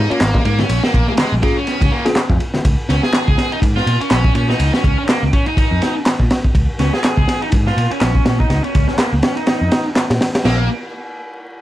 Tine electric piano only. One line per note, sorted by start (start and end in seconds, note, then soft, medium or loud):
0.10 0.21 C#4 medium
0.10 0.21 F4 medium
0.10 0.21 C#5 medium
1.43 1.57 C#4 medium
1.43 1.57 F4 medium
1.43 1.57 G#4 loud
2.05 2.16 C#4 medium
2.05 2.16 F4 medium
2.05 2.17 G#4 loud